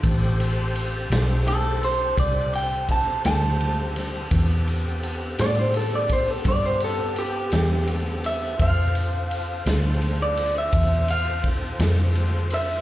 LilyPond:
<<
  \new Staff \with { instrumentName = "Clean electric guitar" } { \time 12/8 \key a \minor \tempo 4. = 56 a''8 r4. a'8 c''8 d''8 g''8 a''8 a''4.~ | a''8 r4 d''16 c''16 a'16 d''16 c''16 a'16 d''16 c''16 a'8 g'4 r8 e''8 | f''2~ f''16 d''8 e''8. f''8 r4. e''8 | }
  \new Staff \with { instrumentName = "Tonewheel organ" } { \time 12/8 \key a \minor <c' g' a' c''>1. | <b c' g' a'>1. | <c' f' a' c''>1. | }
  \new Staff \with { instrumentName = "Fingered electric bass" } { \clef bass \time 12/8 \key a \minor a,,4. b,,4. c,4. d,4. | e,4. a,4. g,4. e,4. | f,4. d,4. e,4. f,4. | }
  \new DrumStaff \with { instrumentName = "Drums" } \drummode { \time 12/8 <bd cymr>8 cymr8 cymr8 <cymr sn>8 cymr8 cymr8 <bd cymr>8 cymr8 <bd cymr>8 <cymr sn>8 cymr8 <cymr sn>8 | <bd cymr>8 cymr8 cymr8 <cymr sn>8 cymr8 <bd cymr>8 <bd cymr>8 cymr8 cymr8 <cymr sn>8 cymr8 cymr8 | <bd cymr>8 cymr8 cymr8 <cymr sn>8 cymr8 cymr8 <bd cymr>8 cymr8 <bd cymr>8 <cymr sn>8 cymr8 cymr8 | }
>>